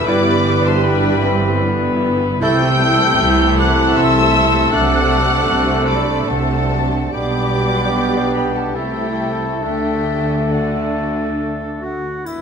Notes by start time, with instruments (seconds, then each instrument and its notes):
Already playing: trombone section E3 G3, french horn section B3 E4, trumpet section B4
0.08 double bass section G1, cello section G2, bassoon G3, viola section B3 G4, clarinet E4, oboe B4, violin section D5 D6, flute B5
0.66 violin section C5 C6, flute A5
0.85 viola section D4, violin section B4 B5, flute G5
1.24 viola section C4
1.64 viola section B3 E4
2.40 double bass section C2, cello section C3, trombone section E3 A3, viola section G3 E4, bassoon A3, french horn section C4, clarinet E4, trumpet section A4, oboe A4, violin section G5 G6, flute E6
2.45 french horn section E4
2.61 viola section A3 G4
2.79 viola section G3 E4
2.99 viola section A3 G4
3.18 double bass section C2, cello section C3, viola section G3 E4
3.37 viola section A3 G4
3.56 viola section G3 E4, violin section F#5 F#6, flute D6
3.77 viola section A3 G4
3.96 double bass section C2, cello section C3, viola section G3 E4, violin section E5 E6, flute C6
4.15 viola section A3 G4
4.34 viola section G3 E4
4.53 viola section A3 G4
4.72 double bass section C2, cello section C3, trombone section C3, viola section F#3 D4, bassoon A3, clarinet D4, french horn section D4, oboe A4, violin section F#5 F#6, flute D6
4.91 viola section A3 C4
5.10 viola section F#3 D4
5.29 viola section A3 C4
5.48 double bass section C2, cello section C3, viola section F#3 D4
5.69 viola section A3 C4
5.88 viola section F#3 D4, violin section D5 D6, flute B5
6.09 viola section A3 C4
6.27 double bass section C2, cello section C3, viola section F#3 D4, violin section A4 A5, flute F#5
6.50 viola section A3 C4
6.71 viola section F#3 D4
6.93 viola section A3 C4
7.13 double bass section B1, cello section B2, trombone section B2 B3, viola section G3 G4, bassoon B3, clarinet D4, trumpet section G4, oboe G4, violin section D5 D6, flute B5
8.34 violin section B4 B5, flute G5
8.55 violin section A4 A5, flute F#5
8.75 double bass section C2, cello section C3, viola section A3 E4, bassoon A3, french horn section C4 E4, clarinet E4, violin section G4 G5, oboe A4, trumpet section A4, flute E5
8.79 trombone section C3 A3
9.62 double bass section D2, trombone section D3, cello section D3, french horn section A3 D4, viola section A3 D4, bassoon A3, clarinet D4, violin section G4 G5, oboe A4, flute E5
10.50 bassoon A3, viola section A3 D4, clarinet D4, violin section F#4 F#5, oboe A4, flute D5
11.82 clarinet F#4, flute F#5, oboe F#5
12.25 double bass section G1, cello section G2, french horn section B3 D4, viola section B3 D4, clarinet E4, violin section B4 D5, flute E5, oboe E5, triangle